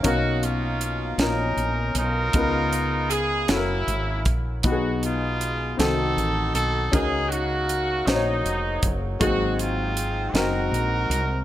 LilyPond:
<<
  \new Staff \with { instrumentName = "Horn section" } { \time 6/8 \key fis \major \tempo 4. = 52 << { fis'8 eis'4 ais'4 ais'8~ | ais'4 gis'8 e'4 r8 | fis'8 eis'4 a'4 a'8 | gis'8 fis'4 dis'4 r8 |
fis'8 eis'4 ais'4. | } \\ { <ais dis'>8 <ais cis'>4 <cis' dis'>4 <dis' eis'>8~ | <dis' eis'>4 r8 <ais cis'>4. | dis'8 gis4 <ees' ges'>4. | dis'8 <ais dis'>4 <fis ais>4. |
<bis dis'>8 bis4 <dis' fis'>4. | } >> }
  \new Staff \with { instrumentName = "Upright piano" } { \time 6/8 \key fis \major <b, cis' dis' ais' eis''>4. <cis' dis' eis' ais'>4. | <cis b dis' eis' ais'>4. <cis' e' fis' a' ais'>4. | <b, fis b dis' g' gis'>4. <ees c' ees' ges' a'>4. | <cis cis' dis' fis' ais'>4. <cis' dis' fis' bis' cis''>4. |
<gis, fis ais bis dis' gis'>4. <bis dis' fis' ais'>4. | }
  \new Staff \with { instrumentName = "Fretless electric bass" } { \clef bass \time 6/8 \key fis \major b,,4. ais,,8 ais,,8 b,,8 | cis,4. fis,,8 gis,,8 ais,,8 | b,,4. c,8 a,,8 b,,8 | cis,4. ais,,8 eis,,8 fis,,8 |
gis,,4. fis,,8 ais,,8 bis,,8 | }
  \new DrumStaff \with { instrumentName = "Drums" } \drummode { \time 6/8 <hh bd>8 hh8 hh8 <hh sn>8 hh8 hh8 | <hh bd>8 hh8 hh8 <hh sn>8 hh8 <hh bd>8 | <hh bd>8 hh8 hh8 <hh sn>8 hh8 hh8 | <hh bd>8 hh8 hh8 <hh sn>8 hh8 <hh bd>8 |
<hh bd>8 hh8 hh8 <hh sn>8 hh8 hh8 | }
>>